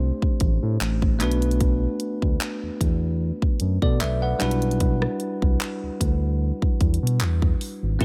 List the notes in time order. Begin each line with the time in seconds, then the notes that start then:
Already playing: C2 A3 C4 D4 G4 C5, downlifter
0.22 kick
0.40 A1, kick, closed hi-hat
0.63 A2
0.81 A1, clap, closed hi-hat
1.02 kick
1.19 B1 A3 B3 D4 F#4 B4, clap, closed hi-hat
1.31 closed hi-hat
1.42 closed hi-hat
1.51 closed hi-hat
1.61 kick, closed hi-hat
2.00 closed hi-hat
2.22 D2, kick
2.41 clap, closed hi-hat
2.63 E2
2.81 E2, kick, closed hi-hat
3.42 kick
3.60 F#2, closed hi-hat
3.82 B2 A4 D5, kick
4.01 B1 B4 E5, clap, closed hi-hat
4.22 B4 F#5
4.39 B1 G3 D4 E4 F#4 B4, clap, closed hi-hat
4.51 closed hi-hat
4.62 closed hi-hat
4.71 closed hi-hat
4.80 kick, closed hi-hat
5.02 cross-stick
5.20 closed hi-hat
5.42 C2, kick
5.61 clap, closed hi-hat
5.83 D2
6.01 D2, kick, closed hi-hat
6.62 kick
6.81 E2, kick, closed hi-hat
6.94 closed hi-hat
7.03 B2
7.07 closed hi-hat
7.21 E2, clap, closed hi-hat
7.42 kick
7.61 open hi-hat
7.83 G#1
7.99 A1 A3 C4 E4 G4 A4 G5 A5, kick, closed hi-hat